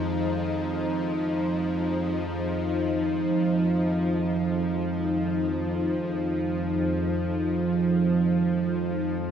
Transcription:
Already playing: synth drone F2 F3, ambient pad F3 D#4 G#4 C5
9.21 synth drone F2 F3

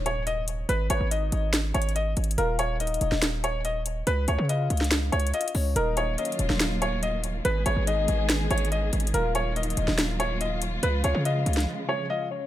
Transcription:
Already playing: 808-style bass D#1, impact
0.06 felt piano C#5, closed hi-hat
0.27 felt piano D#5, closed hi-hat
0.48 closed hi-hat
0.69 808-style bass G#1, felt piano B4, closed hi-hat
0.90 808-style bass G#1, soft synth lead B4, felt piano C#5, closed hi-hat
1.01 808-style bass G#1
1.11 soft synth lead D#5, felt piano D#5, closed hi-hat
1.32 808-style bass G#1, closed hi-hat
1.53 snare, closed hi-hat
1.74 808-style bass G#1, felt piano C#5, closed hi-hat
1.82 closed hi-hat
1.89 closed hi-hat
1.96 felt piano D#5, closed hi-hat
2.17 808-style bass G#1, closed hi-hat, open hi-hat
2.24 closed hi-hat
2.31 closed hi-hat
2.38 808-style bass D#1, felt piano A#4, soft synth lead F5, closed hi-hat
2.59 felt piano C#5, closed hi-hat
2.80 soft synth lead D#5, felt piano D#5, closed hi-hat
2.87 closed hi-hat
2.94 closed hi-hat
3.01 808-style bass D#1, closed hi-hat
3.12 808-style bass D#1, snare
3.22 snare, closed hi-hat
3.44 felt piano C#5, closed hi-hat
3.65 felt piano D#5, closed hi-hat
3.86 closed hi-hat
4.07 808-style bass C#2, felt piano B4, closed hi-hat
4.28 808-style bass C#2, soft synth lead C#5, felt piano C#5, closed hi-hat
4.38 808-style bass C#3
4.49 felt piano D#5, soft synth lead F5, closed hi-hat
4.70 808-style bass C#2, closed hi-hat
4.77 snare, closed hi-hat
4.84 closed hi-hat
4.91 snare, closed hi-hat
5.12 808-style bass C#2, felt piano C#5, closed hi-hat
5.20 closed hi-hat
5.27 closed hi-hat
5.33 felt piano D#5, soft synth lead F5, closed hi-hat
5.41 closed hi-hat
5.48 closed hi-hat
5.55 808-style bass C#2, soft synth lead C#5, open hi-hat
5.76 808-style bass D#1, string section D#3 F#3 A#3 F4, felt piano A#4, soft synth lead D#5, closed hi-hat
5.97 felt piano C#5, closed hi-hat
6.18 soft synth lead C#5, felt piano D#5, closed hi-hat
6.25 closed hi-hat
6.32 closed hi-hat
6.39 808-style bass D#1, closed hi-hat
6.50 808-style bass D#1, snare
6.60 snare, closed hi-hat
6.82 felt piano C#5, closed hi-hat
7.03 felt piano D#5, closed hi-hat
7.24 closed hi-hat
7.45 808-style bass G#1, string section G#3 B3 G#4, felt piano B4, closed hi-hat
7.66 808-style bass G#1, soft synth lead B4, felt piano C#5, closed hi-hat
7.77 808-style bass G#1
7.87 soft synth lead D#5, felt piano D#5, closed hi-hat
8.08 808-style bass G#1, closed hi-hat
8.29 snare, closed hi-hat
8.51 808-style bass G#1, felt piano C#5, closed hi-hat
8.58 closed hi-hat
8.65 closed hi-hat
8.72 felt piano D#5, closed hi-hat
8.93 808-style bass G#1, closed hi-hat, open hi-hat
9.00 closed hi-hat
9.07 closed hi-hat
9.14 808-style bass D#1, string section F#3 A#3 F4, felt piano A#4, soft synth lead F5, closed hi-hat
9.35 felt piano C#5, closed hi-hat
9.56 soft synth lead D#5, felt piano D#5, closed hi-hat
9.63 closed hi-hat
9.70 closed hi-hat
9.77 808-style bass D#1, closed hi-hat
9.88 808-style bass D#1, snare
9.98 snare, closed hi-hat
10.20 felt piano C#5, closed hi-hat
10.41 felt piano D#5, closed hi-hat
10.62 closed hi-hat
10.83 808-style bass C#2, string section C#3 F3 G#3, felt piano B4, closed hi-hat
11.04 808-style bass C#2, soft synth lead C#5, felt piano C#5, closed hi-hat
11.15 808-style bass C#3
11.25 felt piano D#5, soft synth lead F5, closed hi-hat
11.46 808-style bass C#2, closed hi-hat
11.53 snare, closed hi-hat
11.60 closed hi-hat
11.89 felt piano C#5
12.10 felt piano D#5, soft synth lead F5
12.31 soft synth lead C#5

